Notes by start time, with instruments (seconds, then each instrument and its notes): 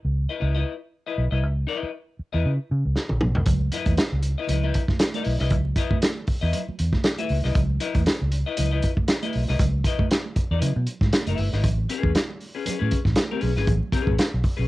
0.05 fingered electric bass C#2
0.29 clean electric guitar E4 B4 D#5
0.40 fingered electric bass C#2, clean electric guitar E4 B4 D#5
0.55 clean electric guitar E4 B4 D#5
1.06 clean electric guitar E4 B4 D#5
1.18 fingered electric bass B1
1.31 fingered electric bass C2, clean electric guitar E4 B4 D#5
1.43 fingered electric bass C#2
1.67 clean electric guitar E4 B4 D#5
1.83 muted fingered electric bass stroke
2.19 muted fingered electric bass stroke
2.33 fingered electric bass E2, clean electric guitar E4 B4 D#5
2.46 fingered electric bass C#3
2.71 fingered electric bass C#3
2.86 fingered electric bass C#2
2.96 snare
3.09 fingered electric bass A#1, high tom
3.21 fingered electric bass B1, mid tom
3.35 fingered electric bass C2, floor tom
3.46 fingered electric bass C#2, kick, closed hi-hat, muted conga, low conga
3.61 muted conga
3.72 clean electric guitar E4 B4 D#5, closed hi-hat
3.86 fingered electric bass E2, kick, closed hi-hat, high conga
3.97 muted fingered electric bass stroke, snare, closed hi-hat, muted conga
4.12 fingered electric bass C#2, muted conga
4.23 closed hi-hat
4.38 clean electric guitar E4 B4 D#5
4.48 fingered electric bass C#2, clean electric guitar E4 B4 D#5, closed hi-hat, muted conga, low conga
4.63 clean electric guitar E4 B4 D#5, muted conga
4.74 kick, closed hi-hat
4.88 kick, snare, high conga
4.99 snare, closed hi-hat
5.14 clean electric guitar E4 B4 D#5, closed hi-hat, muted conga, high conga
5.24 fingered electric bass B1, open hi-hat
5.39 fingered electric bass C2, clean electric guitar E4 B4 D#5, snare
5.50 fingered electric bass C#2, kick, closed hi-hat, muted conga, low conga
5.65 muted conga
5.76 clean electric guitar E4 B4 D#5, kick, closed hi-hat
5.90 muted fingered electric bass stroke, kick, high conga
6.02 snare, closed hi-hat
6.17 muted conga
6.27 muted fingered electric bass stroke, kick, open hi-hat
6.41 fingered electric bass E2, clean electric guitar E4 B4 D#5
6.53 closed hi-hat, muted conga, low conga
6.68 muted fingered electric bass stroke, muted conga
6.79 fingered electric bass E2, closed hi-hat
6.93 kick, snare, high conga
7.04 snare, closed hi-hat
7.18 clean electric guitar E4 B4 E5, closed hi-hat, high conga
7.29 fingered electric bass C#2, open hi-hat
7.44 fingered electric bass C2, clean electric guitar E4 B4 D#5, snare
7.55 fingered electric bass C#2, kick, closed hi-hat, muted conga, low conga
7.70 muted conga
7.80 clean electric guitar E4 B4 D#5, closed hi-hat
7.95 fingered electric bass E2, kick, closed hi-hat, high conga
8.06 muted fingered electric bass stroke, snare, closed hi-hat
8.22 fingered electric bass C#2, muted conga
8.32 closed hi-hat
8.46 clean electric guitar E4 B4 D#5
8.57 fingered electric bass C#2, clean electric guitar E4 B4 D#5, closed hi-hat, muted conga, low conga
8.71 clean electric guitar E4 B4 D#5
8.83 kick, closed hi-hat
8.97 kick, high conga
9.08 snare, closed hi-hat, muted conga
9.23 clean electric guitar E4 B4 D#5, closed hi-hat, muted conga, high conga
9.33 fingered electric bass B1, open hi-hat
9.48 fingered electric bass C2, clean electric guitar E4 B4 D#5, snare
9.59 fingered electric bass C#2, kick, closed hi-hat, low conga
9.84 clean electric guitar E4 B4 D#5, kick, closed hi-hat
9.98 muted fingered electric bass stroke, kick, high conga
10.11 snare, closed hi-hat
10.26 muted conga
10.36 muted fingered electric bass stroke, kick, closed hi-hat
10.51 fingered electric bass E2, clean electric guitar E4 B4 D#5
10.61 fingered electric bass C#3, closed hi-hat, muted conga, low conga
10.76 fingered electric bass B2, muted conga
10.87 closed hi-hat
11.01 fingered electric bass G#2, kick, snare, high conga
11.12 snare, closed hi-hat, muted conga, high conga
11.27 fingered electric bass F#1, clean electric guitar E4 B4 E5, closed hi-hat, muted conga, high conga
11.38 fingered electric bass G1, open hi-hat
11.53 fingered electric bass G#1, clean electric guitar E4 B4 D#5, snare
11.63 fingered electric bass A1, kick, closed hi-hat, low conga
11.78 muted conga
11.89 clean electric guitar C#4 G#4 B4, closed hi-hat
12.03 fingered electric bass E2, kick, high conga
12.15 snare, closed hi-hat
12.30 muted conga
12.40 open hi-hat
12.55 clean electric guitar C#4 G#4 B4
12.66 clean electric guitar C#4 G#4 B4, muted fingered electric bass stroke, closed hi-hat, muted conga, low conga
12.79 fingered electric bass A2, clean electric guitar C#4 G#4 B4, muted conga
12.91 kick, closed hi-hat
13.05 fingered electric bass A1, kick, snare, high conga
13.16 snare, closed hi-hat, muted conga, high conga
13.31 clean electric guitar C#4 G#4 B4, muted conga, high conga
13.41 fingered electric bass B1, open hi-hat, low conga
13.56 fingered electric bass G#1, clean electric guitar C#4 G#4 B4, snare
13.67 fingered electric bass A1, kick, closed hi-hat, muted conga, low conga
13.83 muted conga
13.92 clean electric guitar C#4 G#4 B4, kick, closed hi-hat
14.07 fingered electric bass A1, kick, high conga
14.19 snare, closed hi-hat
14.34 fingered electric bass B1
14.44 kick, open hi-hat
14.57 fingered electric bass B1, clean electric guitar C#4 G#4 B4